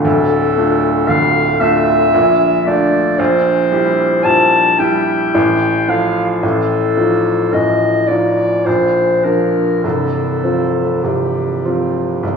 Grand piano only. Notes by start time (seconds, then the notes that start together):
0.05 D1 D2
0.57 A3 D4 F4
1.09 D1 D2
1.61 A3 D4 F4
2.14 A#1 A#2
2.66 A3 D4 F4
3.19 A#1 A#2
3.72 G3 E4 G4
4.25 A#1 A#2
4.79 G3 E4 G4
5.34 A1 A2
5.88 F3 F4 A4
6.43 A1 A2
6.97 F3 D#4 F4
7.53 A1 A2
8.09 F3 D#4 F4
8.67 A#1 A#2
9.25 F3 D4 F4
9.84 C1 C2
10.44 F3 C4 F4
11.04 C1 C2
11.65 F3 C4 F4
12.23 C1 C2